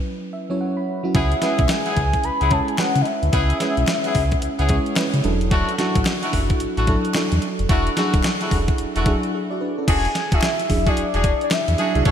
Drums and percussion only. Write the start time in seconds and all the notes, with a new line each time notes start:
1.15 kick, closed hi-hat
1.32 closed hi-hat
1.42 snare, closed hi-hat
1.59 kick, closed hi-hat
1.69 snare, clap, closed hi-hat
1.86 closed hi-hat
1.96 kick, closed hi-hat
2.13 kick, closed hi-hat
2.24 closed hi-hat
2.41 closed hi-hat
2.51 kick, closed hi-hat
2.68 closed hi-hat
2.78 snare, clap, closed hi-hat
2.95 closed hi-hat
3.05 closed hi-hat
3.23 closed hi-hat
3.33 kick, closed hi-hat
3.50 closed hi-hat
3.60 snare, closed hi-hat
3.77 closed hi-hat
3.88 snare, clap, closed hi-hat
4.04 closed hi-hat
4.15 kick, open hi-hat
4.32 kick, closed hi-hat
4.42 closed hi-hat
4.59 closed hi-hat
4.69 kick, closed hi-hat
4.86 closed hi-hat
4.96 snare, clap, closed hi-hat
5.14 closed hi-hat
5.24 closed hi-hat
5.41 closed hi-hat
5.51 kick, closed hi-hat
5.69 closed hi-hat
5.78 snare, closed hi-hat
5.96 kick, closed hi-hat
6.05 snare, clap, closed hi-hat
6.23 closed hi-hat
6.33 kick, open hi-hat
6.50 kick, closed hi-hat
6.60 closed hi-hat
6.77 closed hi-hat
6.87 kick, closed hi-hat
7.05 closed hi-hat
7.14 snare, clap, closed hi-hat
7.32 closed hi-hat
7.42 closed hi-hat
7.59 closed hi-hat
7.69 kick, closed hi-hat
7.87 closed hi-hat
7.97 snare, closed hi-hat
8.14 kick, closed hi-hat
8.23 snare, clap, closed hi-hat
8.41 closed hi-hat
8.51 kick, open hi-hat
8.68 kick, closed hi-hat
8.78 closed hi-hat
8.96 closed hi-hat
9.06 kick, closed hi-hat
9.23 closed hi-hat
9.88 kick, closed hi-hat, crash
10.05 closed hi-hat
10.15 snare, closed hi-hat
10.32 kick, closed hi-hat
10.42 snare, clap, closed hi-hat
10.59 closed hi-hat
10.70 kick, open hi-hat
10.87 kick, closed hi-hat
10.97 closed hi-hat
11.14 closed hi-hat
11.24 kick, closed hi-hat
11.41 closed hi-hat
11.51 snare, clap, closed hi-hat
11.68 closed hi-hat
11.78 closed hi-hat
11.95 closed hi-hat
12.05 kick, closed hi-hat